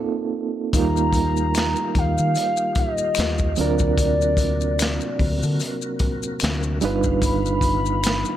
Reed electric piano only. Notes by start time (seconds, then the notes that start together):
Already playing: A#3 C4 D#4 F4 A4
0.73 F#3 A#3 D#4 F4 A#4
0.79 G3
3.57 F#3 C4 D4 F4 A#4
6.81 G3 D4 D#4 F4 B4